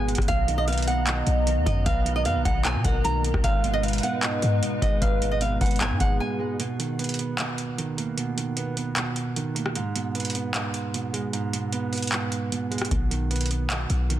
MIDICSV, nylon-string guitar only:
0, 0, Header, 1, 2, 480
1, 0, Start_track
1, 0, Tempo, 394737
1, 342, Time_signature, 4, 2, 24, 8
1, 17264, End_track
2, 0, Start_track
2, 0, Title_t, "Nylon-string guitar"
2, 0, Program_c, 0, 24
2, 342, Note_on_c, 0, 77, 103
2, 681, Note_off_c, 0, 77, 0
2, 703, Note_on_c, 0, 75, 89
2, 809, Note_off_c, 0, 75, 0
2, 823, Note_on_c, 0, 77, 95
2, 1034, Note_off_c, 0, 77, 0
2, 1062, Note_on_c, 0, 78, 88
2, 1973, Note_off_c, 0, 78, 0
2, 2023, Note_on_c, 0, 75, 85
2, 2234, Note_off_c, 0, 75, 0
2, 2262, Note_on_c, 0, 77, 103
2, 2600, Note_off_c, 0, 77, 0
2, 2623, Note_on_c, 0, 75, 83
2, 2728, Note_off_c, 0, 75, 0
2, 2742, Note_on_c, 0, 77, 90
2, 2954, Note_off_c, 0, 77, 0
2, 2982, Note_on_c, 0, 78, 83
2, 3194, Note_off_c, 0, 78, 0
2, 3222, Note_on_c, 0, 80, 89
2, 3434, Note_off_c, 0, 80, 0
2, 3464, Note_on_c, 0, 78, 81
2, 3675, Note_off_c, 0, 78, 0
2, 3700, Note_on_c, 0, 82, 84
2, 3913, Note_off_c, 0, 82, 0
2, 4183, Note_on_c, 0, 77, 96
2, 4521, Note_off_c, 0, 77, 0
2, 4542, Note_on_c, 0, 75, 101
2, 4648, Note_off_c, 0, 75, 0
2, 4661, Note_on_c, 0, 77, 89
2, 4873, Note_off_c, 0, 77, 0
2, 4903, Note_on_c, 0, 78, 80
2, 5814, Note_off_c, 0, 78, 0
2, 5862, Note_on_c, 0, 75, 85
2, 6074, Note_off_c, 0, 75, 0
2, 6102, Note_on_c, 0, 77, 102
2, 6440, Note_off_c, 0, 77, 0
2, 6463, Note_on_c, 0, 75, 87
2, 6568, Note_off_c, 0, 75, 0
2, 6585, Note_on_c, 0, 77, 86
2, 6795, Note_off_c, 0, 77, 0
2, 6823, Note_on_c, 0, 78, 82
2, 7034, Note_off_c, 0, 78, 0
2, 7063, Note_on_c, 0, 80, 84
2, 7275, Note_off_c, 0, 80, 0
2, 7301, Note_on_c, 0, 78, 74
2, 7513, Note_off_c, 0, 78, 0
2, 7543, Note_on_c, 0, 80, 78
2, 7755, Note_off_c, 0, 80, 0
2, 17264, End_track
0, 0, End_of_file